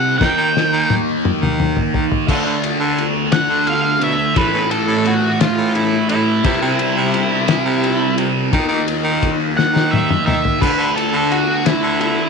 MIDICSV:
0, 0, Header, 1, 5, 480
1, 0, Start_track
1, 0, Tempo, 694444
1, 137, Time_signature, 6, 3, 24, 8
1, 8498, End_track
2, 0, Start_track
2, 0, Title_t, "Lead electric guitar"
2, 0, Program_c, 0, 29
2, 0, Note_on_c, 0, 78, 101
2, 122, Note_off_c, 0, 78, 0
2, 125, Note_on_c, 0, 79, 78
2, 642, Note_off_c, 0, 79, 0
2, 2300, Note_on_c, 0, 78, 86
2, 2529, Note_off_c, 0, 78, 0
2, 2537, Note_on_c, 0, 77, 87
2, 2767, Note_off_c, 0, 77, 0
2, 2791, Note_on_c, 0, 76, 82
2, 3014, Note_off_c, 0, 76, 0
2, 3024, Note_on_c, 0, 71, 77
2, 3250, Note_off_c, 0, 71, 0
2, 3258, Note_on_c, 0, 69, 93
2, 3488, Note_off_c, 0, 69, 0
2, 3507, Note_on_c, 0, 66, 89
2, 3732, Note_off_c, 0, 66, 0
2, 3740, Note_on_c, 0, 65, 83
2, 3969, Note_off_c, 0, 65, 0
2, 3979, Note_on_c, 0, 64, 90
2, 4207, Note_off_c, 0, 64, 0
2, 4215, Note_on_c, 0, 64, 98
2, 5627, Note_off_c, 0, 64, 0
2, 6616, Note_on_c, 0, 78, 95
2, 6848, Note_off_c, 0, 78, 0
2, 6851, Note_on_c, 0, 76, 99
2, 7086, Note_off_c, 0, 76, 0
2, 7094, Note_on_c, 0, 76, 97
2, 7327, Note_off_c, 0, 76, 0
2, 7336, Note_on_c, 0, 71, 76
2, 7569, Note_off_c, 0, 71, 0
2, 7576, Note_on_c, 0, 69, 92
2, 7809, Note_off_c, 0, 69, 0
2, 7823, Note_on_c, 0, 66, 81
2, 8053, Note_off_c, 0, 66, 0
2, 8065, Note_on_c, 0, 64, 84
2, 8294, Note_off_c, 0, 64, 0
2, 8303, Note_on_c, 0, 64, 85
2, 8498, Note_off_c, 0, 64, 0
2, 8498, End_track
3, 0, Start_track
3, 0, Title_t, "Distorted electric guitar"
3, 0, Program_c, 1, 30
3, 0, Note_on_c, 1, 48, 100
3, 0, Note_on_c, 1, 55, 109
3, 0, Note_on_c, 1, 60, 112
3, 119, Note_off_c, 1, 48, 0
3, 126, Note_off_c, 1, 55, 0
3, 128, Note_off_c, 1, 60, 0
3, 130, Note_on_c, 1, 51, 109
3, 137, Note_on_c, 1, 58, 101
3, 146, Note_on_c, 1, 63, 114
3, 1556, Note_off_c, 1, 51, 0
3, 1559, Note_off_c, 1, 58, 0
3, 1564, Note_off_c, 1, 63, 0
3, 1573, Note_on_c, 1, 50, 104
3, 1579, Note_on_c, 1, 57, 97
3, 1589, Note_on_c, 1, 62, 103
3, 2997, Note_off_c, 1, 50, 0
3, 3000, Note_off_c, 1, 57, 0
3, 3005, Note_off_c, 1, 62, 0
3, 3006, Note_on_c, 1, 45, 87
3, 3015, Note_on_c, 1, 52, 99
3, 3026, Note_on_c, 1, 57, 115
3, 4434, Note_off_c, 1, 45, 0
3, 4439, Note_off_c, 1, 52, 0
3, 4444, Note_off_c, 1, 57, 0
3, 4449, Note_on_c, 1, 48, 104
3, 4461, Note_on_c, 1, 55, 101
3, 4466, Note_on_c, 1, 60, 110
3, 5877, Note_off_c, 1, 48, 0
3, 5883, Note_off_c, 1, 55, 0
3, 5885, Note_off_c, 1, 60, 0
3, 5889, Note_on_c, 1, 51, 92
3, 5899, Note_on_c, 1, 58, 95
3, 5903, Note_on_c, 1, 63, 106
3, 7319, Note_off_c, 1, 51, 0
3, 7324, Note_off_c, 1, 58, 0
3, 7326, Note_off_c, 1, 63, 0
3, 7327, Note_on_c, 1, 50, 96
3, 7338, Note_on_c, 1, 57, 106
3, 7343, Note_on_c, 1, 62, 117
3, 8498, Note_off_c, 1, 50, 0
3, 8498, Note_off_c, 1, 57, 0
3, 8498, Note_off_c, 1, 62, 0
3, 8498, End_track
4, 0, Start_track
4, 0, Title_t, "Baritone saxophone"
4, 0, Program_c, 2, 67
4, 144, Note_on_c, 2, 51, 90
4, 233, Note_off_c, 2, 51, 0
4, 259, Note_on_c, 2, 51, 92
4, 350, Note_off_c, 2, 51, 0
4, 501, Note_on_c, 2, 51, 98
4, 682, Note_off_c, 2, 51, 0
4, 977, Note_on_c, 2, 51, 90
4, 1251, Note_off_c, 2, 51, 0
4, 1332, Note_on_c, 2, 51, 83
4, 1425, Note_off_c, 2, 51, 0
4, 1582, Note_on_c, 2, 50, 87
4, 1671, Note_off_c, 2, 50, 0
4, 1697, Note_on_c, 2, 50, 84
4, 1788, Note_off_c, 2, 50, 0
4, 1935, Note_on_c, 2, 50, 96
4, 2118, Note_off_c, 2, 50, 0
4, 2415, Note_on_c, 2, 50, 88
4, 2773, Note_on_c, 2, 47, 80
4, 2783, Note_off_c, 2, 50, 0
4, 2864, Note_off_c, 2, 47, 0
4, 3018, Note_on_c, 2, 45, 87
4, 3108, Note_off_c, 2, 45, 0
4, 3129, Note_on_c, 2, 45, 92
4, 3222, Note_off_c, 2, 45, 0
4, 3370, Note_on_c, 2, 45, 98
4, 3554, Note_off_c, 2, 45, 0
4, 3850, Note_on_c, 2, 45, 85
4, 4126, Note_off_c, 2, 45, 0
4, 4216, Note_on_c, 2, 45, 84
4, 4306, Note_off_c, 2, 45, 0
4, 4456, Note_on_c, 2, 48, 83
4, 4546, Note_off_c, 2, 48, 0
4, 4572, Note_on_c, 2, 48, 98
4, 4664, Note_off_c, 2, 48, 0
4, 4815, Note_on_c, 2, 48, 98
4, 4998, Note_off_c, 2, 48, 0
4, 5291, Note_on_c, 2, 48, 94
4, 5568, Note_off_c, 2, 48, 0
4, 5649, Note_on_c, 2, 48, 78
4, 5743, Note_off_c, 2, 48, 0
4, 5898, Note_on_c, 2, 51, 90
4, 5988, Note_off_c, 2, 51, 0
4, 6003, Note_on_c, 2, 51, 100
4, 6099, Note_off_c, 2, 51, 0
4, 6246, Note_on_c, 2, 51, 96
4, 6433, Note_off_c, 2, 51, 0
4, 6726, Note_on_c, 2, 51, 84
4, 7005, Note_off_c, 2, 51, 0
4, 7089, Note_on_c, 2, 51, 81
4, 7183, Note_off_c, 2, 51, 0
4, 7342, Note_on_c, 2, 50, 78
4, 7431, Note_off_c, 2, 50, 0
4, 7449, Note_on_c, 2, 50, 92
4, 7544, Note_off_c, 2, 50, 0
4, 7690, Note_on_c, 2, 50, 93
4, 7877, Note_off_c, 2, 50, 0
4, 8176, Note_on_c, 2, 50, 85
4, 8453, Note_off_c, 2, 50, 0
4, 8498, End_track
5, 0, Start_track
5, 0, Title_t, "Drums"
5, 145, Note_on_c, 9, 36, 114
5, 152, Note_on_c, 9, 38, 72
5, 214, Note_off_c, 9, 36, 0
5, 222, Note_off_c, 9, 38, 0
5, 392, Note_on_c, 9, 38, 70
5, 462, Note_off_c, 9, 38, 0
5, 623, Note_on_c, 9, 48, 85
5, 692, Note_off_c, 9, 48, 0
5, 865, Note_on_c, 9, 47, 85
5, 934, Note_off_c, 9, 47, 0
5, 988, Note_on_c, 9, 45, 85
5, 1057, Note_off_c, 9, 45, 0
5, 1105, Note_on_c, 9, 45, 97
5, 1174, Note_off_c, 9, 45, 0
5, 1221, Note_on_c, 9, 43, 87
5, 1290, Note_off_c, 9, 43, 0
5, 1343, Note_on_c, 9, 43, 101
5, 1412, Note_off_c, 9, 43, 0
5, 1463, Note_on_c, 9, 43, 90
5, 1532, Note_off_c, 9, 43, 0
5, 1579, Note_on_c, 9, 36, 108
5, 1581, Note_on_c, 9, 49, 120
5, 1649, Note_off_c, 9, 36, 0
5, 1650, Note_off_c, 9, 49, 0
5, 1822, Note_on_c, 9, 51, 82
5, 1891, Note_off_c, 9, 51, 0
5, 2061, Note_on_c, 9, 51, 73
5, 2130, Note_off_c, 9, 51, 0
5, 2294, Note_on_c, 9, 51, 90
5, 2298, Note_on_c, 9, 38, 97
5, 2363, Note_off_c, 9, 51, 0
5, 2367, Note_off_c, 9, 38, 0
5, 2536, Note_on_c, 9, 51, 75
5, 2605, Note_off_c, 9, 51, 0
5, 2775, Note_on_c, 9, 51, 68
5, 2844, Note_off_c, 9, 51, 0
5, 3014, Note_on_c, 9, 51, 105
5, 3017, Note_on_c, 9, 36, 120
5, 3083, Note_off_c, 9, 51, 0
5, 3086, Note_off_c, 9, 36, 0
5, 3256, Note_on_c, 9, 51, 82
5, 3325, Note_off_c, 9, 51, 0
5, 3494, Note_on_c, 9, 51, 78
5, 3563, Note_off_c, 9, 51, 0
5, 3737, Note_on_c, 9, 51, 97
5, 3740, Note_on_c, 9, 38, 111
5, 3806, Note_off_c, 9, 51, 0
5, 3809, Note_off_c, 9, 38, 0
5, 3976, Note_on_c, 9, 51, 82
5, 4045, Note_off_c, 9, 51, 0
5, 4211, Note_on_c, 9, 51, 78
5, 4280, Note_off_c, 9, 51, 0
5, 4454, Note_on_c, 9, 51, 117
5, 4456, Note_on_c, 9, 36, 127
5, 4523, Note_off_c, 9, 51, 0
5, 4525, Note_off_c, 9, 36, 0
5, 4694, Note_on_c, 9, 51, 78
5, 4763, Note_off_c, 9, 51, 0
5, 4934, Note_on_c, 9, 51, 80
5, 5004, Note_off_c, 9, 51, 0
5, 5171, Note_on_c, 9, 51, 94
5, 5175, Note_on_c, 9, 38, 111
5, 5240, Note_off_c, 9, 51, 0
5, 5244, Note_off_c, 9, 38, 0
5, 5416, Note_on_c, 9, 51, 94
5, 5486, Note_off_c, 9, 51, 0
5, 5653, Note_on_c, 9, 51, 71
5, 5722, Note_off_c, 9, 51, 0
5, 5895, Note_on_c, 9, 51, 107
5, 5896, Note_on_c, 9, 36, 127
5, 5965, Note_off_c, 9, 36, 0
5, 5965, Note_off_c, 9, 51, 0
5, 6136, Note_on_c, 9, 51, 85
5, 6205, Note_off_c, 9, 51, 0
5, 6377, Note_on_c, 9, 51, 75
5, 6378, Note_on_c, 9, 36, 74
5, 6446, Note_off_c, 9, 51, 0
5, 6447, Note_off_c, 9, 36, 0
5, 6626, Note_on_c, 9, 38, 63
5, 6695, Note_off_c, 9, 38, 0
5, 6747, Note_on_c, 9, 38, 67
5, 6816, Note_off_c, 9, 38, 0
5, 6867, Note_on_c, 9, 48, 84
5, 6936, Note_off_c, 9, 48, 0
5, 6984, Note_on_c, 9, 47, 80
5, 7053, Note_off_c, 9, 47, 0
5, 7102, Note_on_c, 9, 45, 96
5, 7172, Note_off_c, 9, 45, 0
5, 7223, Note_on_c, 9, 43, 90
5, 7292, Note_off_c, 9, 43, 0
5, 7341, Note_on_c, 9, 36, 127
5, 7345, Note_on_c, 9, 57, 102
5, 7410, Note_off_c, 9, 36, 0
5, 7414, Note_off_c, 9, 57, 0
5, 7586, Note_on_c, 9, 51, 76
5, 7655, Note_off_c, 9, 51, 0
5, 7821, Note_on_c, 9, 51, 77
5, 7890, Note_off_c, 9, 51, 0
5, 8059, Note_on_c, 9, 51, 96
5, 8062, Note_on_c, 9, 38, 99
5, 8128, Note_off_c, 9, 51, 0
5, 8131, Note_off_c, 9, 38, 0
5, 8300, Note_on_c, 9, 51, 87
5, 8369, Note_off_c, 9, 51, 0
5, 8498, End_track
0, 0, End_of_file